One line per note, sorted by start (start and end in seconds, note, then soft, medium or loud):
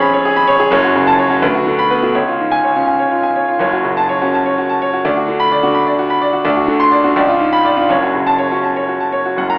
0.00 0.67 F1 medium
0.00 0.67 F2 loud
0.00 0.74 F3 medium
0.00 0.74 C#4 medium
0.00 0.25 G#4 medium
0.00 0.14 C#5 loud
0.00 0.02 B5 loud
0.00 0.21 B5 loud
0.14 0.32 C#5 medium
0.25 0.44 G#4 medium
0.36 0.55 B5 loud
0.47 0.67 C#5 loud
0.60 0.72 G#4 loud
0.71 1.40 F#1 loud
0.71 1.40 F#2 loud
0.71 0.91 C#5 loud
0.84 1.03 F#4 medium
0.96 1.14 C#3 medium
1.07 1.26 A5 loud
1.19 1.38 C#5 medium
1.30 1.42 C#4 medium
1.30 1.42 F#4 medium
1.42 2.12 D2 loud
1.42 1.61 B4 medium
1.55 1.73 F#4 medium
1.67 1.85 D3 medium
1.79 1.98 B5 loud
1.91 2.10 B3 medium
1.91 2.10 B4 medium
2.03 2.15 D3 medium
2.03 2.15 F#4 medium
2.15 3.57 C#2 medium
2.15 2.34 C#5 medium
2.28 2.47 F4 medium
2.39 2.58 G#2 medium
2.52 2.71 G#5 loud
2.64 2.83 C#5 medium
2.76 2.95 C#4 medium
2.76 2.95 F4 medium
2.87 3.07 G#5 medium
2.99 3.19 C#5 medium
3.11 3.31 F4 medium
3.23 3.43 G#5 medium
3.36 3.56 C#5 medium
3.48 3.60 F4 medium
3.59 5.01 F#1 medium
3.59 5.01 F#2 medium
3.59 3.80 C#5 medium
3.73 3.92 F#4 medium
3.85 4.04 C#3 medium
3.97 4.17 A5 loud
4.09 4.29 C#5 medium
4.22 4.41 C#4 medium
4.22 4.41 F#4 medium
4.34 4.53 A5 medium
4.46 4.65 C#5 medium
4.58 4.77 F#4 medium
4.69 4.89 A5 medium
4.82 5.01 C#5 medium
4.93 5.05 F#4 medium
5.05 6.42 D2 medium
5.05 5.24 D5 medium
5.17 5.36 F#4 medium
5.28 5.48 D3 medium
5.40 5.59 B5 loud
5.52 5.71 D5 medium
5.63 5.83 D4 medium
5.63 5.83 F#4 medium
5.75 5.94 B5 medium
5.87 6.06 D5 medium
5.99 6.18 F#4 medium
6.10 6.29 B5 loud
6.22 6.41 D5 medium
6.33 6.45 F#4 medium
6.45 7.14 D2 loud
6.45 6.64 D5 loud
6.57 6.76 F#4 medium
6.68 6.88 D3 loud
6.80 7.00 C6 loud
6.92 7.12 D5 medium
7.04 7.17 D4 medium
7.04 7.17 F#4 medium
7.16 7.87 C#2 loud
7.16 7.36 D5 loud
7.28 7.48 F4 medium
7.39 7.60 G#2 medium
7.53 7.73 B5 loud
7.65 7.85 D5 medium
7.77 7.90 D4 medium
7.77 7.90 F4 medium
7.89 9.33 F#1 medium
7.89 9.33 F#2 medium
7.89 8.10 C#5 medium
8.03 8.22 F#4 medium
8.15 8.34 C#3 medium
8.27 8.46 A5 loud
8.39 8.58 C#5 medium
8.52 8.71 C#4 medium
8.52 8.71 F#4 medium
8.64 8.83 A5 medium
8.76 8.96 C#5 medium
8.88 9.08 F#4 medium
9.00 9.20 A5 medium
9.12 9.32 C#5 medium
9.26 9.37 F#4 medium
9.37 9.58 F#1 medium
9.37 9.58 F#2 medium
9.37 9.57 F#5 medium
9.50 9.58 A#5 medium